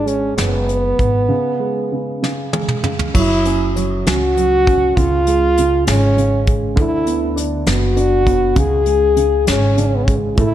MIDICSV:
0, 0, Header, 1, 5, 480
1, 0, Start_track
1, 0, Tempo, 614125
1, 1017, Time_signature, 6, 3, 24, 8
1, 2937, Tempo, 602410
1, 8344, End_track
2, 0, Start_track
2, 0, Title_t, "French horn"
2, 0, Program_c, 0, 60
2, 55, Note_on_c, 0, 61, 92
2, 295, Note_off_c, 0, 61, 0
2, 299, Note_on_c, 0, 59, 91
2, 1952, Note_off_c, 0, 59, 0
2, 2466, Note_on_c, 0, 64, 108
2, 2908, Note_off_c, 0, 64, 0
2, 3182, Note_on_c, 0, 66, 117
2, 3899, Note_on_c, 0, 65, 109
2, 3911, Note_off_c, 0, 66, 0
2, 4618, Note_off_c, 0, 65, 0
2, 4625, Note_on_c, 0, 61, 99
2, 5130, Note_off_c, 0, 61, 0
2, 5343, Note_on_c, 0, 64, 96
2, 5786, Note_off_c, 0, 64, 0
2, 6073, Note_on_c, 0, 66, 102
2, 6787, Note_on_c, 0, 68, 96
2, 6799, Note_off_c, 0, 66, 0
2, 7493, Note_off_c, 0, 68, 0
2, 7498, Note_on_c, 0, 61, 97
2, 7743, Note_on_c, 0, 62, 73
2, 7755, Note_off_c, 0, 61, 0
2, 7807, Note_on_c, 0, 61, 74
2, 7819, Note_off_c, 0, 62, 0
2, 7878, Note_on_c, 0, 59, 72
2, 7890, Note_off_c, 0, 61, 0
2, 7948, Note_on_c, 0, 61, 71
2, 7960, Note_off_c, 0, 59, 0
2, 8027, Note_off_c, 0, 61, 0
2, 8207, Note_on_c, 0, 64, 102
2, 8344, Note_off_c, 0, 64, 0
2, 8344, End_track
3, 0, Start_track
3, 0, Title_t, "Grand piano"
3, 0, Program_c, 1, 0
3, 0, Control_c, 1, 64, 127
3, 0, Note_on_c, 1, 56, 52
3, 42, Note_off_c, 1, 56, 0
3, 42, Note_on_c, 1, 56, 53
3, 276, Note_off_c, 1, 56, 0
3, 287, Note_on_c, 1, 56, 52
3, 990, Note_off_c, 1, 56, 0
3, 1006, Note_on_c, 1, 49, 72
3, 1028, Control_c, 1, 64, 0
3, 1160, Control_c, 1, 64, 127
3, 1245, Note_on_c, 1, 56, 54
3, 1489, Note_off_c, 1, 49, 0
3, 1501, Note_on_c, 1, 49, 53
3, 1719, Note_off_c, 1, 56, 0
3, 1728, Note_off_c, 1, 49, 0
3, 1739, Note_on_c, 1, 49, 67
3, 1750, Control_c, 1, 64, 0
3, 1895, Control_c, 1, 64, 127
3, 1982, Note_on_c, 1, 56, 53
3, 2203, Note_off_c, 1, 49, 0
3, 2214, Note_on_c, 1, 49, 53
3, 2447, Note_off_c, 1, 56, 0
3, 2450, Note_off_c, 1, 49, 0
3, 2456, Note_on_c, 1, 54, 75
3, 2472, Control_c, 1, 64, 0
3, 2600, Control_c, 1, 64, 127
3, 2702, Note_on_c, 1, 61, 57
3, 2927, Note_off_c, 1, 54, 0
3, 2939, Note_on_c, 1, 54, 59
3, 3172, Note_off_c, 1, 61, 0
3, 3184, Note_on_c, 1, 61, 53
3, 3415, Note_off_c, 1, 54, 0
3, 3427, Note_on_c, 1, 54, 53
3, 3657, Note_off_c, 1, 61, 0
3, 3669, Note_on_c, 1, 61, 57
3, 3889, Note_off_c, 1, 54, 0
3, 3897, Note_off_c, 1, 61, 0
3, 3907, Note_on_c, 1, 49, 76
3, 3908, Control_c, 1, 64, 0
3, 4033, Control_c, 1, 64, 127
3, 4142, Note_on_c, 1, 56, 61
3, 4382, Note_off_c, 1, 49, 0
3, 4394, Note_on_c, 1, 49, 57
3, 4614, Note_off_c, 1, 56, 0
3, 4626, Note_on_c, 1, 56, 60
3, 4850, Note_off_c, 1, 49, 0
3, 4862, Note_on_c, 1, 49, 57
3, 5080, Note_off_c, 1, 56, 0
3, 5092, Note_on_c, 1, 56, 54
3, 5325, Note_off_c, 1, 49, 0
3, 5327, Note_off_c, 1, 56, 0
3, 5328, Note_on_c, 1, 50, 77
3, 5349, Control_c, 1, 64, 0
3, 5469, Control_c, 1, 64, 127
3, 5572, Note_on_c, 1, 59, 58
3, 5807, Note_on_c, 1, 62, 59
3, 6037, Note_off_c, 1, 59, 0
3, 6049, Note_on_c, 1, 59, 56
3, 6276, Note_off_c, 1, 62, 0
3, 6288, Note_on_c, 1, 62, 59
3, 6516, Note_off_c, 1, 59, 0
3, 6528, Note_on_c, 1, 59, 59
3, 6733, Note_off_c, 1, 50, 0
3, 6754, Note_off_c, 1, 62, 0
3, 6761, Note_off_c, 1, 59, 0
3, 6762, Note_on_c, 1, 49, 76
3, 6778, Control_c, 1, 64, 0
3, 6941, Control_c, 1, 64, 127
3, 7005, Note_on_c, 1, 56, 55
3, 7233, Note_off_c, 1, 49, 0
3, 7245, Note_on_c, 1, 49, 57
3, 7471, Note_off_c, 1, 56, 0
3, 7483, Note_on_c, 1, 56, 53
3, 7714, Note_off_c, 1, 49, 0
3, 7726, Note_on_c, 1, 49, 54
3, 7962, Note_off_c, 1, 56, 0
3, 7974, Note_on_c, 1, 56, 55
3, 8198, Note_off_c, 1, 49, 0
3, 8208, Note_off_c, 1, 56, 0
3, 8215, Note_on_c, 1, 57, 75
3, 8226, Control_c, 1, 64, 0
3, 8344, Note_off_c, 1, 57, 0
3, 8344, End_track
4, 0, Start_track
4, 0, Title_t, "Upright bass"
4, 0, Program_c, 2, 32
4, 0, Note_on_c, 2, 32, 89
4, 264, Note_off_c, 2, 32, 0
4, 294, Note_on_c, 2, 30, 100
4, 746, Note_off_c, 2, 30, 0
4, 774, Note_on_c, 2, 32, 90
4, 1001, Note_off_c, 2, 32, 0
4, 2463, Note_on_c, 2, 30, 95
4, 3147, Note_off_c, 2, 30, 0
4, 3184, Note_on_c, 2, 37, 89
4, 3870, Note_off_c, 2, 37, 0
4, 3906, Note_on_c, 2, 37, 101
4, 4590, Note_off_c, 2, 37, 0
4, 4625, Note_on_c, 2, 32, 110
4, 5309, Note_off_c, 2, 32, 0
4, 5339, Note_on_c, 2, 38, 113
4, 6022, Note_off_c, 2, 38, 0
4, 6052, Note_on_c, 2, 30, 107
4, 6737, Note_off_c, 2, 30, 0
4, 6767, Note_on_c, 2, 37, 105
4, 7492, Note_on_c, 2, 32, 93
4, 7504, Note_off_c, 2, 37, 0
4, 8184, Note_off_c, 2, 32, 0
4, 8212, Note_on_c, 2, 33, 96
4, 8344, Note_off_c, 2, 33, 0
4, 8344, End_track
5, 0, Start_track
5, 0, Title_t, "Drums"
5, 57, Note_on_c, 9, 42, 57
5, 135, Note_off_c, 9, 42, 0
5, 295, Note_on_c, 9, 42, 85
5, 300, Note_on_c, 9, 38, 99
5, 373, Note_off_c, 9, 42, 0
5, 379, Note_off_c, 9, 38, 0
5, 538, Note_on_c, 9, 42, 48
5, 617, Note_off_c, 9, 42, 0
5, 775, Note_on_c, 9, 36, 90
5, 775, Note_on_c, 9, 42, 62
5, 853, Note_off_c, 9, 36, 0
5, 853, Note_off_c, 9, 42, 0
5, 1748, Note_on_c, 9, 38, 54
5, 1827, Note_off_c, 9, 38, 0
5, 1979, Note_on_c, 9, 48, 76
5, 2057, Note_off_c, 9, 48, 0
5, 2098, Note_on_c, 9, 47, 68
5, 2176, Note_off_c, 9, 47, 0
5, 2217, Note_on_c, 9, 45, 89
5, 2295, Note_off_c, 9, 45, 0
5, 2339, Note_on_c, 9, 43, 80
5, 2417, Note_off_c, 9, 43, 0
5, 2460, Note_on_c, 9, 49, 100
5, 2461, Note_on_c, 9, 36, 120
5, 2538, Note_off_c, 9, 49, 0
5, 2539, Note_off_c, 9, 36, 0
5, 2699, Note_on_c, 9, 42, 66
5, 2777, Note_off_c, 9, 42, 0
5, 2943, Note_on_c, 9, 42, 66
5, 3023, Note_off_c, 9, 42, 0
5, 3183, Note_on_c, 9, 42, 98
5, 3189, Note_on_c, 9, 38, 106
5, 3263, Note_off_c, 9, 42, 0
5, 3268, Note_off_c, 9, 38, 0
5, 3426, Note_on_c, 9, 42, 57
5, 3506, Note_off_c, 9, 42, 0
5, 3667, Note_on_c, 9, 36, 102
5, 3667, Note_on_c, 9, 42, 72
5, 3746, Note_off_c, 9, 36, 0
5, 3747, Note_off_c, 9, 42, 0
5, 3904, Note_on_c, 9, 36, 108
5, 3904, Note_on_c, 9, 42, 84
5, 3983, Note_off_c, 9, 42, 0
5, 3984, Note_off_c, 9, 36, 0
5, 4140, Note_on_c, 9, 42, 67
5, 4219, Note_off_c, 9, 42, 0
5, 4386, Note_on_c, 9, 42, 73
5, 4465, Note_off_c, 9, 42, 0
5, 4621, Note_on_c, 9, 42, 100
5, 4627, Note_on_c, 9, 38, 106
5, 4700, Note_off_c, 9, 42, 0
5, 4706, Note_off_c, 9, 38, 0
5, 4866, Note_on_c, 9, 42, 60
5, 4945, Note_off_c, 9, 42, 0
5, 5099, Note_on_c, 9, 42, 68
5, 5102, Note_on_c, 9, 36, 96
5, 5178, Note_off_c, 9, 42, 0
5, 5182, Note_off_c, 9, 36, 0
5, 5337, Note_on_c, 9, 42, 86
5, 5338, Note_on_c, 9, 36, 121
5, 5416, Note_off_c, 9, 42, 0
5, 5418, Note_off_c, 9, 36, 0
5, 5573, Note_on_c, 9, 42, 67
5, 5653, Note_off_c, 9, 42, 0
5, 5818, Note_on_c, 9, 42, 74
5, 5898, Note_off_c, 9, 42, 0
5, 6051, Note_on_c, 9, 42, 98
5, 6057, Note_on_c, 9, 38, 109
5, 6130, Note_off_c, 9, 42, 0
5, 6136, Note_off_c, 9, 38, 0
5, 6293, Note_on_c, 9, 42, 56
5, 6372, Note_off_c, 9, 42, 0
5, 6530, Note_on_c, 9, 36, 95
5, 6531, Note_on_c, 9, 42, 74
5, 6609, Note_off_c, 9, 36, 0
5, 6610, Note_off_c, 9, 42, 0
5, 6764, Note_on_c, 9, 42, 82
5, 6766, Note_on_c, 9, 36, 115
5, 6844, Note_off_c, 9, 42, 0
5, 6846, Note_off_c, 9, 36, 0
5, 7002, Note_on_c, 9, 42, 63
5, 7081, Note_off_c, 9, 42, 0
5, 7248, Note_on_c, 9, 42, 70
5, 7327, Note_off_c, 9, 42, 0
5, 7490, Note_on_c, 9, 42, 98
5, 7496, Note_on_c, 9, 38, 106
5, 7570, Note_off_c, 9, 42, 0
5, 7576, Note_off_c, 9, 38, 0
5, 7733, Note_on_c, 9, 42, 56
5, 7813, Note_off_c, 9, 42, 0
5, 7972, Note_on_c, 9, 42, 73
5, 7973, Note_on_c, 9, 36, 97
5, 8052, Note_off_c, 9, 42, 0
5, 8053, Note_off_c, 9, 36, 0
5, 8209, Note_on_c, 9, 42, 78
5, 8212, Note_on_c, 9, 36, 120
5, 8288, Note_off_c, 9, 42, 0
5, 8291, Note_off_c, 9, 36, 0
5, 8344, End_track
0, 0, End_of_file